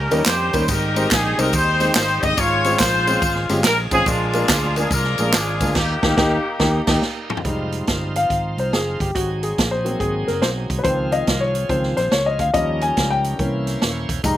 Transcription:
Already playing: tonewheel organ D#3 G3 A#3 C#4 G4, horn section C#4 G4 A#4
0.11 fingered electric bass D#2, grand piano G3 A#3 C#4 D#4 A#4, ride, tambourine
0.26 fingered electric bass F2, horn section G4 C5, snare, clap, ride, tambourine
0.53 fingered electric bass D#2, grand piano G3 A#3 C#4 D#4 A#4, kick, ride, tambourine
0.68 fingered electric bass G#1, grand piano G#2, tonewheel organ D#3 G3 G#3 B3 G4, horn section D#4 G4 A#4, kick, ride, tambourine
0.74 tonewheel organ C4
0.96 grand piano G#3 C4 D#4 G4 C5, ride, tambourine
1.11 fingered electric bass A#1, horn section G#4, kick, snare, clap, ride, tambourine
1.38 fingered electric bass C2, grand piano G#3 C4 D#4 G4 C5, horn section A#4, ride, tambourine
1.53 fingered electric bass D#2, horn section D#4 G4 C5, kick, ride, tambourine
1.80 grand piano G#3 C4 D#4 G4 C5, snare, ride, tambourine
1.95 fingered electric bass G#1, horn section C5, snare, clap, ride, tambourine
2.22 fingered electric bass G1, grand piano G#3 C4 D#4 G4 D#5, horn section D#5, kick, ride, tambourine
2.37 fingered electric bass G#1, grand piano G#2, tonewheel organ F3 G#3 C#4 G#4, horn section F4 C#5, kick, ride, tambourine
2.64 grand piano G#3 C4 C#4 F4 C5, ride, tambourine
2.79 fingered electric bass A#1, horn section F4 C5, kick, snare, clap, ride, tambourine
3.07 grand piano G#3 C4 C#4 F4 C5, ride, tambourine
3.22 fingered electric bass G#1, kick, ride, tambourine
3.35 snare
3.49 fingered electric bass G1, grand piano G#3 C4 C#4 F4 G4, snare, ride, tambourine
3.64 fingered electric bass A#1, horn section A#4, snare, clap, ride, tambourine
3.91 fingered electric bass A1, grand piano G#3 C4 C#4 F4 C5, horn section G#4, kick, ride, tambourine
4.06 fingered electric bass A#1, grand piano A#2, tonewheel organ F3 G#3 A#3 D4 G#4, horn section G#3 D4 F4, kick, ride, tambourine
4.33 grand piano G#3 A#3 D4 F4 A#4, ride, tambourine
4.48 fingered electric bass D2, kick, snare, clap, ride, tambourine
4.76 grand piano G#3 A#3 D4 F4 A#4, horn section G#4, ride, tambourine
4.91 fingered electric bass C2, horn section D4 F4 A#4, kick, ride, tambourine
5.04 snare
5.18 fingered electric bass A#1, grand piano G#3 A#3 D4 F4 G#4, ride, tambourine
5.33 fingered electric bass G#1, horn section D4 F4 G#4, snare, clap, ride, tambourine
5.60 fingered electric bass D2, grand piano G#3 A#3 D4 F4 A#4, kick, ride, tambourine
5.75 fingered electric bass D#2, tonewheel organ A#3 D#4 G4, horn section A#3 D#4 G4, kick, snare, crash
6.03 fingered electric bass D#2, grand piano A#3 D#4 G4, kick, snare
6.17 fingered electric bass D#2, grand piano A#3 D#4 G4, kick, snare
6.60 fingered electric bass D#2, grand piano A#3 D#4 G4, kick, snare
6.87 fingered electric bass D#2, grand piano A#3 D#4 G4, kick, snare, crash
7.02 snare
7.30 mid tom
7.37 floor tom
7.44 fingered electric bass F1, tonewheel organ F3 C4 D#4 F4, grand piano G3 G#3 D#4, kick, closed hi-hat
7.72 closed hi-hat
7.87 fingered electric bass G1, kick, snare, closed hi-hat
8.16 grand piano F5, closed hi-hat
8.30 fingered electric bass G#1, kick, closed hi-hat
8.57 fingered electric bass C2, grand piano C5, closed hi-hat
8.73 fingered electric bass F#1, grand piano G#4, snare, closed hi-hat
9.00 fingered electric bass G1, grand piano G4, kick, closed hi-hat
9.15 fingered electric bass G#1, tonewheel organ F#3 C4 D#4 G4, grand piano F#4, kick, closed hi-hat
9.21 tonewheel organ G#4
9.43 grand piano G#4, closed hi-hat
9.58 fingered electric bass A#1, kick, snare, closed hi-hat
9.71 grand piano C5
9.84 grand piano F#3 A#3 C4, closed hi-hat
10.00 fingered electric bass G#1, grand piano G#4, kick, closed hi-hat
10.28 fingered electric bass F#1, grand piano A#4, snare, closed hi-hat
10.42 fingered electric bass B1, grand piano C5, snare, closed hi-hat
10.70 fingered electric bass C2, kick, closed hi-hat
10.79 grand piano B4
10.83 fingered electric bass C#2, grand piano D#3 F3 C4 C5, tonewheel organ F3 C4 F4 G#4, kick, closed hi-hat
11.12 grand piano D#5 F5, closed hi-hat
11.27 fingered electric bass C2, kick, snare, closed hi-hat
11.41 grand piano C#5
11.55 closed hi-hat
11.69 fingered electric bass C#2, grand piano D#3 F3 C4 C5, kick, closed hi-hat
11.83 snare
11.97 fingered electric bass A#1, grand piano C5, snare, closed hi-hat
12.12 fingered electric bass C#2, grand piano C#5, snare, closed hi-hat
12.26 grand piano D#5
12.39 fingered electric bass D2, grand piano F5, kick, closed hi-hat
12.53 fingered electric bass D#2, grand piano F3 G3 C#4 D#5, tonewheel organ G3 C#4 D#4 A#4, kick, closed hi-hat
12.81 grand piano G#5, closed hi-hat
12.97 fingered electric bass C#2, kick, snare, closed hi-hat
13.10 grand piano G5
13.24 closed hi-hat
13.38 fingered electric bass C2, grand piano E3 A#3 C#4, tonewheel organ A#3 C#4 E4 C5, kick, closed hi-hat
13.67 snare, closed hi-hat
13.81 fingered electric bass D#1, tonewheel organ C#5, snare, closed hi-hat
14.09 fingered electric bass E1, kick, closed hi-hat
14.23 fingered electric bass F1, grand piano G3 G#3 D#4 A#5, tonewheel organ G#3 D#4 F4 C5, kick, closed hi-hat, tambourine

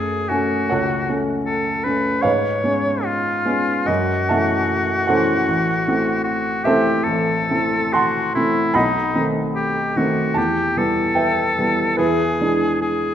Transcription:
Already playing: grand piano F#2 A3 C#4 F#4 A4 C#5, oboe G#4
0.29 grand piano A3 C#4 G#5, oboe F#4
0.69 grand piano C#2 A4 C#5 F#5
1.09 grand piano A3 C#4
1.45 oboe A4
1.84 grand piano A3 C#4, oboe B4
2.22 grand piano G#2 B4 C#5 F5, oboe C#5
2.64 grand piano G#3 B3 C#4
3.04 oboe F4
3.45 grand piano G#3 B3 C#4
3.86 grand piano F#2 D#5, oboe F#4
4.29 grand piano E3 A3 C#4 E5 F#5 A5
5.07 grand piano E3 A3 C#4 A4 C5 F#5
5.48 grand piano A1
5.88 grand piano E3 A3 C4
6.24 oboe F#4
6.64 grand piano E3 A3 C4 A4 C5 E5, oboe G4
7.04 grand piano A1, oboe A4
7.50 grand piano E3 A3 C4
7.93 oboe F#4, grand piano F#5 A5 C6
8.35 grand piano E3 A3 C4, oboe E4
8.74 grand piano B1 D#5 F#5 B5, oboe D#4
9.15 grand piano D#3 A3 C4
9.55 oboe G4
9.96 grand piano D#3 A3 C4, oboe F#4
10.34 grand piano E2 A5, oboe G4
10.76 grand piano E3 G3 B3, oboe A4
11.15 grand piano B4 E5 G5
11.58 grand piano E3 G3 B3
11.97 grand piano E2 E4 G#4 B4, oboe G#4
12.40 grand piano E3 G#3 D4
12.81 oboe G#4

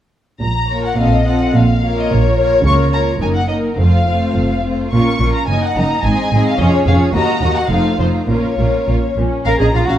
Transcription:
0.42 double bass section A#1, cello section A#2, violin section A#5
0.70 viola section A#3 F4, violin section A#4 C#5
0.85 violin section F#5
0.98 double bass section A#1, cello section A#2, viola section C4 F4, violin section A4 D#5 F5
1.15 violin section D#5
1.26 viola section C4 F4, violin section A4 D#5 F#5
1.55 double bass section A#1, cello section A#2, violin section F5
1.83 viola section A#3 F4, violin section A#4 C#5
1.98 violin section D#5
2.11 double bass section A#1, cello section A#2, violin section C#5
2.38 viola section A#3 F4, violin section A#4 C#5
2.65 double bass section C#2, cello section C#3, viola section A#3 F4, violin section A#4 C#5 C#6
2.92 viola section A#3 F4, violin section A#4 C#5 A#5
3.20 double bass section F#1, cello section F#2, viola section A#3 D#4, violin section A#4 G#5
3.34 violin section F#5
3.48 viola section A#3 D#4, violin section A#4 D#5
3.77 double bass section F1, cello section F2, viola section A3 C4, violin section F4 C5 F5
4.07 viola section A3 C4, violin section F4 C5
4.36 double bass section F1, cello section F2
4.64 viola section A3 C4, violin section F4 C5
4.91 double bass section A#1, cello section A#2, viola section A#3 C#4, violin section F4 A#4 C#6
5.20 double bass section A#1, cello section A#2, viola section A#3 C#4, violin section F4 A#4
5.34 violin section A#5
5.47 double bass section F#1, cello section F#2, viola section A#3 D#4, violin section D#4 D#5 G#5
5.64 violin section F#5
5.76 double bass section F#1, cello section F#2, viola section A#3 D#4, violin section D#4 D#5 A#5
6.04 double bass section G#1, cello section G#2, viola section C4 D#4, violin section G#4 D#5 G#5
6.32 double bass section G#1, cello section G#2, viola section C4 D#4, violin section G#4 D#5
6.47 violin section F5
6.59 double bass section F1, cello section F2, viola section C#4 F4, violin section G#4 C#5 D#5
6.73 violin section C#5
6.87 double bass section F1, cello section F2, viola section C#4 F4, violin section G#4 C#5 F5
7.13 double bass section D#2, cello section D#2, viola section A#3 F#4, violin section F#4 D#5 A#5
7.41 double bass section D#2, cello section D#2, viola section A#3 F#4, violin section F#4 D#5
7.56 violin section F#5
7.69 double bass section F1, cello section F2, viola section A3 D#4, violin section F4 C5 F5
7.99 double bass section F1, cello section F2, viola section A3 D#4, violin section F4 C5
8.28 double bass section A#1, cello section A#2, viola section A#3 C#4, violin section F4 A#4 C#5
8.57 double bass section A#1, cello section A#2, viola section A#3 C#4, violin section F4 A#4
8.87 double bass section A#1, cello section A#2, viola section A#3 C#4, violin section F4
9.16 double bass section A#1, cello section A#2, viola section A#3 C#4, violin section C#4
9.45 double bass section A#1, viola section C#4, cello section A#4, violin section F5 A#5
9.60 double bass section A#1, viola section C#4, cello section G#4, violin section D#5
9.74 double bass section A#1, viola section C#4, cello section F4, violin section F5
9.88 double bass section A#1, viola section C#4, cello section F#4, violin section F5

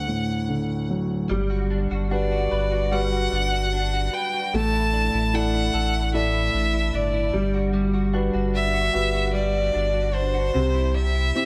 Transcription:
Already playing: grand piano D2, violin F#5
0.07 grand piano A2
0.48 grand piano D3
0.89 grand piano F#3
1.30 sub bass G1, clean electric guitar G3, grand piano G3
1.50 clean electric guitar F#4
1.70 clean electric guitar D4
1.91 sub bass G1, clean electric guitar F#4
2.11 clean electric guitar D4, grand piano F#4 G4 B4, violin D5
2.31 clean electric guitar F#4
2.51 sub bass G1, clean electric guitar B4
2.71 clean electric guitar F#4
2.92 clean electric guitar G3, grand piano F#4 G4 B4, violin F#5
3.12 clean electric guitar F#4
3.32 sub bass G1, clean electric guitar D4
3.53 clean electric guitar F#4
3.73 clean electric guitar D4
3.93 clean electric guitar F#4
4.13 clean electric guitar B4, violin G5
4.33 clean electric guitar F#4
4.53 sub bass A1, clean electric guitar A2, grand piano A3, violin A5
4.73 clean electric guitar E4
4.93 clean electric guitar D4
5.14 sub bass A1, clean electric guitar E4
5.33 clean electric guitar D4, grand piano E4 A4 D5, violin F#5
5.54 clean electric guitar E4
5.73 sub bass A1, clean electric guitar A4
5.94 clean electric guitar E4
6.14 clean electric guitar A2, grand piano E4 A4 D5, violin E5
6.34 clean electric guitar E4
6.53 sub bass A1, clean electric guitar D4
6.73 clean electric guitar E4
6.93 sub bass G1, clean electric guitar D4, violin D5
7.13 clean electric guitar E4
7.33 sub bass G1, clean electric guitar G3, grand piano G3
7.54 clean electric guitar F#4
7.73 clean electric guitar G3
7.94 clean electric guitar F#4
8.13 clean electric guitar D4, grand piano F#4 G4 B4
8.33 sub bass G1, clean electric guitar F#4
8.54 clean electric guitar D4, violin E5
8.74 clean electric guitar F#4
8.93 sub bass G1, grand piano F#4 G4 B4
9.14 clean electric guitar F#4
9.34 clean electric guitar G3, violin D5
9.54 clean electric guitar F#4
9.73 sub bass G1, clean electric guitar D4
9.94 clean electric guitar F#4
10.13 clean electric guitar D4, violin C5
10.34 clean electric guitar F#4
10.54 sub bass C2, clean electric guitar C3, grand piano C3
10.74 clean electric guitar E4
10.94 clean electric guitar C3, violin E5
11.15 clean electric guitar E4
11.35 clean electric guitar C4, grand piano C4 E4 G4

